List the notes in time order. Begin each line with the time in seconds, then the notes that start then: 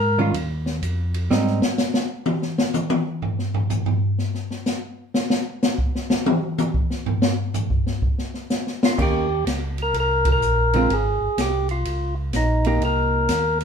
Already playing: G#2 A#4
0.18 D#3 G3 C#4 F4
0.34 D#2, ride
0.66 snare
0.82 F2, hi-hat pedal, ride
1.14 ride
1.31 G#2 G3 C4 D#4, snare
1.47 snare
1.62 snare
1.78 snare, hi-hat pedal
1.94 snare
2.26 high tom
2.42 snare
2.58 snare
2.74 hi-hat pedal, high tom
2.90 high tom
3.22 floor tom
3.39 snare
3.54 floor tom
3.70 floor tom, hi-hat pedal
3.86 floor tom
4.18 snare
4.34 snare
4.51 snare
4.66 snare, hi-hat pedal
5.14 snare
5.30 snare
5.62 snare, hi-hat pedal
5.78 kick
5.95 snare
6.10 snare
6.26 high tom
6.58 hi-hat pedal, high tom
6.74 kick
6.90 snare
7.06 floor tom
7.22 snare
7.54 floor tom, hi-hat pedal
7.70 kick
7.86 snare
8.02 kick
8.18 snare
8.34 snare
8.50 snare, hi-hat pedal
8.67 snare
8.83 F4, snare
8.98 D#2 D#3 A#3 C#4 G4, kick, crash
9.02 G4
9.46 C#2, snare, hi-hat pedal, ride
9.78 ride
9.82 A#4
9.94 C2, ride
10.00 A#4
10.25 kick, ride
10.32 A#4
10.41 A#1, hi-hat pedal
10.73 D3 G#3 C4 F4, ride
10.89 G#1, ride
10.93 G#4
11.20 G#1
11.38 C2 G4, snare, hi-hat pedal, ride
11.69 F4, ride
11.85 C#2, ride
12.33 A#1 D#4, snare, hi-hat pedal, ride
12.65 A#3 D#4 G4, ride
12.81 C2 A#4, ride
13.29 D#2, snare, hi-hat pedal, ride
13.60 ride